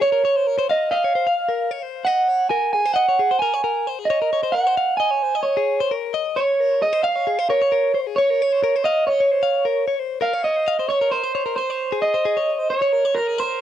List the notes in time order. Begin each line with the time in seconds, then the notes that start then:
0.01 C#5
0.12 A#4
0.25 C#5
0.36 C5
0.47 A#4
0.59 C5
0.70 D#5 F5
0.91 D#5 F5
1.04 C#5
1.15 C5
1.27 F5
1.49 A#4
1.71 C#5
1.83 C5
2.05 D#5 F#5
2.28 C#5
2.49 A#4 G#5
2.73 G#4 G#5
2.85 C5
2.94 D#5 F#5
3.08 C#5
3.19 G#4
3.31 C5
3.39 A#4 G#5
3.54 C#5
3.64 A#4
3.87 C5
3.99 G#4
4.05 D#5
4.10 C#5
4.22 A#4
4.33 C#5
4.43 C5
4.52 A#4 F#5
4.67 C5
4.77 F5
4.97 D#5 G#5
5.11 C#5
5.23 C5
5.35 D#5
5.43 C#5
5.57 G#4
5.80 C5
5.91 A#4
6.14 D#5
6.36 C#5
6.60 A#4
6.82 G#4 D#5
6.93 C5
7.03 F5
7.15 C#5
7.27 G#4
7.39 C5
7.49 A#4 C#5
7.62 C#5
7.72 A#4
7.95 C5
8.07 G#4
8.16 C#5
8.30 A#4
8.42 C#5
8.53 C5
8.64 A#4
8.76 C5
8.84 D#5 F5
9.07 C#5 D#5
9.20 C#5
9.31 C5
9.43 F5
9.65 A#4
9.88 C#5
9.99 C5
10.21 A#4 F5
10.33 C#5
10.44 D#5
10.56 C5
10.68 F5
10.79 C5
10.89 C#5
11.01 A#4
11.12 C5
11.23 C5
11.35 C#5
11.46 A#4
11.56 C5
11.70 C#5
11.92 G#4
12.02 D#5
12.14 C5
12.25 G#4
12.37 C#5
12.59 C5
12.70 C#5
12.82 C#5
12.93 A#4
13.05 C#5
13.14 A#4
13.27 G#4
13.38 A#4 C5